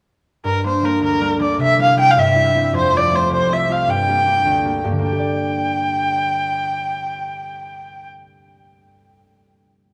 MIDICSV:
0, 0, Header, 1, 3, 480
1, 0, Start_track
1, 0, Tempo, 382653
1, 556, Time_signature, 6, 3, 24, 8
1, 12461, End_track
2, 0, Start_track
2, 0, Title_t, "Erhu"
2, 0, Program_c, 0, 110
2, 567, Note_on_c, 0, 70, 81
2, 795, Note_off_c, 0, 70, 0
2, 831, Note_on_c, 0, 72, 69
2, 1065, Note_on_c, 0, 70, 72
2, 1084, Note_off_c, 0, 72, 0
2, 1285, Note_off_c, 0, 70, 0
2, 1302, Note_on_c, 0, 70, 77
2, 1737, Note_off_c, 0, 70, 0
2, 1776, Note_on_c, 0, 74, 68
2, 1983, Note_off_c, 0, 74, 0
2, 2029, Note_on_c, 0, 76, 92
2, 2242, Note_off_c, 0, 76, 0
2, 2280, Note_on_c, 0, 77, 87
2, 2477, Note_off_c, 0, 77, 0
2, 2505, Note_on_c, 0, 79, 100
2, 2641, Note_on_c, 0, 77, 73
2, 2660, Note_off_c, 0, 79, 0
2, 2744, Note_on_c, 0, 76, 81
2, 2762, Note_off_c, 0, 77, 0
2, 3440, Note_off_c, 0, 76, 0
2, 3466, Note_on_c, 0, 72, 84
2, 3723, Note_on_c, 0, 74, 88
2, 3742, Note_off_c, 0, 72, 0
2, 3952, Note_on_c, 0, 72, 77
2, 3971, Note_off_c, 0, 74, 0
2, 4161, Note_off_c, 0, 72, 0
2, 4178, Note_on_c, 0, 72, 81
2, 4431, Note_on_c, 0, 76, 73
2, 4450, Note_off_c, 0, 72, 0
2, 4664, Note_on_c, 0, 77, 76
2, 4683, Note_off_c, 0, 76, 0
2, 4892, Note_on_c, 0, 79, 94
2, 4910, Note_off_c, 0, 77, 0
2, 6077, Note_off_c, 0, 79, 0
2, 6298, Note_on_c, 0, 79, 70
2, 10139, Note_off_c, 0, 79, 0
2, 12461, End_track
3, 0, Start_track
3, 0, Title_t, "Harp"
3, 0, Program_c, 1, 46
3, 555, Note_on_c, 1, 43, 55
3, 800, Note_on_c, 1, 55, 37
3, 805, Note_on_c, 1, 58, 34
3, 817, Note_on_c, 1, 62, 45
3, 1019, Note_off_c, 1, 55, 0
3, 1031, Note_on_c, 1, 55, 40
3, 1037, Note_off_c, 1, 58, 0
3, 1042, Note_on_c, 1, 58, 42
3, 1043, Note_off_c, 1, 62, 0
3, 1048, Note_on_c, 1, 62, 41
3, 1264, Note_on_c, 1, 38, 53
3, 1335, Note_off_c, 1, 43, 0
3, 1499, Note_off_c, 1, 55, 0
3, 1514, Note_off_c, 1, 58, 0
3, 1514, Note_on_c, 1, 55, 45
3, 1519, Note_on_c, 1, 58, 35
3, 1521, Note_off_c, 1, 62, 0
3, 1526, Note_on_c, 1, 62, 38
3, 1740, Note_off_c, 1, 55, 0
3, 1752, Note_on_c, 1, 55, 46
3, 1756, Note_off_c, 1, 58, 0
3, 1758, Note_off_c, 1, 62, 0
3, 1761, Note_on_c, 1, 58, 37
3, 1763, Note_on_c, 1, 62, 52
3, 1984, Note_on_c, 1, 48, 62
3, 2050, Note_off_c, 1, 38, 0
3, 2050, Note_off_c, 1, 55, 0
3, 2235, Note_on_c, 1, 55, 43
3, 2245, Note_on_c, 1, 60, 36
3, 2246, Note_on_c, 1, 64, 44
3, 2450, Note_off_c, 1, 55, 0
3, 2466, Note_off_c, 1, 60, 0
3, 2466, Note_on_c, 1, 55, 41
3, 2471, Note_on_c, 1, 60, 39
3, 2474, Note_off_c, 1, 64, 0
3, 2479, Note_on_c, 1, 64, 44
3, 2716, Note_on_c, 1, 43, 55
3, 2766, Note_off_c, 1, 48, 0
3, 2936, Note_off_c, 1, 55, 0
3, 2948, Note_on_c, 1, 55, 43
3, 2953, Note_off_c, 1, 60, 0
3, 2955, Note_off_c, 1, 64, 0
3, 2959, Note_on_c, 1, 60, 37
3, 2960, Note_on_c, 1, 64, 47
3, 3174, Note_off_c, 1, 55, 0
3, 3189, Note_on_c, 1, 55, 49
3, 3191, Note_off_c, 1, 60, 0
3, 3196, Note_off_c, 1, 64, 0
3, 3196, Note_on_c, 1, 60, 42
3, 3201, Note_on_c, 1, 64, 47
3, 3423, Note_on_c, 1, 41, 62
3, 3482, Note_off_c, 1, 43, 0
3, 3482, Note_off_c, 1, 55, 0
3, 3498, Note_off_c, 1, 64, 0
3, 3641, Note_on_c, 1, 57, 44
3, 3667, Note_off_c, 1, 60, 0
3, 3672, Note_on_c, 1, 60, 39
3, 3705, Note_on_c, 1, 65, 41
3, 3716, Note_off_c, 1, 58, 0
3, 3895, Note_off_c, 1, 57, 0
3, 3900, Note_on_c, 1, 57, 42
3, 3904, Note_off_c, 1, 60, 0
3, 3909, Note_off_c, 1, 65, 0
3, 3909, Note_on_c, 1, 60, 39
3, 3914, Note_on_c, 1, 65, 43
3, 4132, Note_on_c, 1, 36, 57
3, 4199, Note_off_c, 1, 41, 0
3, 4358, Note_off_c, 1, 57, 0
3, 4363, Note_on_c, 1, 57, 44
3, 4384, Note_off_c, 1, 60, 0
3, 4389, Note_on_c, 1, 60, 39
3, 4413, Note_off_c, 1, 65, 0
3, 4418, Note_on_c, 1, 65, 39
3, 4622, Note_off_c, 1, 57, 0
3, 4627, Note_on_c, 1, 57, 46
3, 4628, Note_off_c, 1, 60, 0
3, 4634, Note_off_c, 1, 65, 0
3, 4634, Note_on_c, 1, 60, 37
3, 4640, Note_on_c, 1, 65, 50
3, 4863, Note_on_c, 1, 43, 63
3, 4917, Note_off_c, 1, 36, 0
3, 5110, Note_off_c, 1, 62, 0
3, 5111, Note_on_c, 1, 58, 36
3, 5115, Note_on_c, 1, 62, 33
3, 5123, Note_on_c, 1, 67, 43
3, 5186, Note_off_c, 1, 57, 0
3, 5342, Note_off_c, 1, 58, 0
3, 5347, Note_on_c, 1, 58, 38
3, 5349, Note_off_c, 1, 62, 0
3, 5354, Note_on_c, 1, 62, 39
3, 5356, Note_off_c, 1, 67, 0
3, 5362, Note_on_c, 1, 67, 43
3, 5583, Note_on_c, 1, 38, 57
3, 5635, Note_off_c, 1, 43, 0
3, 5819, Note_off_c, 1, 58, 0
3, 5824, Note_on_c, 1, 58, 46
3, 5830, Note_off_c, 1, 62, 0
3, 5830, Note_off_c, 1, 67, 0
3, 5835, Note_on_c, 1, 62, 37
3, 5835, Note_on_c, 1, 67, 45
3, 6063, Note_off_c, 1, 58, 0
3, 6068, Note_on_c, 1, 58, 45
3, 6071, Note_off_c, 1, 62, 0
3, 6071, Note_off_c, 1, 67, 0
3, 6076, Note_on_c, 1, 62, 39
3, 6076, Note_on_c, 1, 67, 54
3, 6084, Note_on_c, 1, 43, 50
3, 6168, Note_on_c, 1, 50, 48
3, 6250, Note_off_c, 1, 58, 0
3, 6256, Note_on_c, 1, 58, 45
3, 6335, Note_off_c, 1, 62, 0
3, 6340, Note_on_c, 1, 62, 48
3, 6355, Note_off_c, 1, 38, 0
3, 6419, Note_off_c, 1, 67, 0
3, 6424, Note_on_c, 1, 67, 47
3, 6507, Note_on_c, 1, 74, 57
3, 7804, Note_off_c, 1, 65, 0
3, 8397, Note_off_c, 1, 60, 0
3, 10976, Note_off_c, 1, 43, 0
3, 10996, Note_off_c, 1, 58, 0
3, 11038, Note_off_c, 1, 62, 0
3, 11060, Note_off_c, 1, 50, 0
3, 11080, Note_off_c, 1, 67, 0
3, 11121, Note_off_c, 1, 74, 0
3, 12461, End_track
0, 0, End_of_file